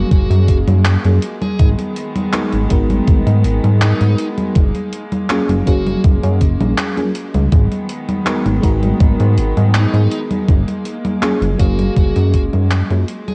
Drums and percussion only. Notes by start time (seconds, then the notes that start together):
0.11 kick, closed hi-hat, high conga
0.31 closed hi-hat, high conga
0.48 kick, closed hi-hat
0.68 closed hi-hat, high conga
0.85 clap, closed hi-hat, high conga
1.05 closed hi-hat, high conga
1.22 closed hi-hat
1.42 closed hi-hat, high conga
1.59 kick, closed hi-hat, high conga
1.79 closed hi-hat, high conga
1.96 closed hi-hat
2.16 closed hi-hat, high conga
2.33 clap, closed hi-hat, high conga
2.52 closed hi-hat, high conga
2.70 kick, closed hi-hat
2.90 closed hi-hat, high conga
3.07 kick, closed hi-hat, high conga
3.27 closed hi-hat, high conga
3.44 closed hi-hat
3.64 closed hi-hat, high conga
3.81 clap, closed hi-hat, high conga
4.01 closed hi-hat, high conga
4.18 closed hi-hat
4.38 closed hi-hat, high conga
4.55 kick, closed hi-hat, high conga
4.75 closed hi-hat, high conga
4.93 closed hi-hat
5.12 closed hi-hat, high conga
5.30 clap, closed hi-hat, high conga
5.49 closed hi-hat, high conga
5.67 kick, closed hi-hat
5.87 closed hi-hat, high conga
6.04 kick, closed hi-hat, high conga
6.23 closed hi-hat, high conga
6.41 kick, closed hi-hat
6.61 closed hi-hat, high conga
6.78 clap, closed hi-hat, high conga
6.97 closed hi-hat, high conga
7.15 closed hi-hat
7.34 closed hi-hat, high conga
7.52 kick, closed hi-hat, high conga
7.72 closed hi-hat, high conga
7.89 closed hi-hat
8.09 closed hi-hat, high conga
8.26 clap, closed hi-hat, high conga
8.46 closed hi-hat, high conga
8.63 kick, closed hi-hat
8.83 closed hi-hat, high conga
9.00 kick, closed hi-hat, high conga
9.20 closed hi-hat, high conga
9.38 closed hi-hat
9.57 closed hi-hat, high conga
9.74 clap, closed hi-hat, high conga
9.94 closed hi-hat, high conga
10.12 closed hi-hat
10.31 closed hi-hat, high conga
10.48 kick, closed hi-hat, high conga
10.68 closed hi-hat, high conga
10.85 closed hi-hat
11.05 closed hi-hat, high conga
11.23 clap, closed hi-hat, high conga
11.42 closed hi-hat, high conga
11.60 kick, closed hi-hat
11.79 closed hi-hat, high conga
11.96 kick, closed hi-hat, high conga
12.16 closed hi-hat, high conga
12.34 kick, closed hi-hat
12.53 closed hi-hat, high conga
12.71 clap, closed hi-hat, high conga
12.90 closed hi-hat, high conga
13.08 closed hi-hat
13.28 closed hi-hat, high conga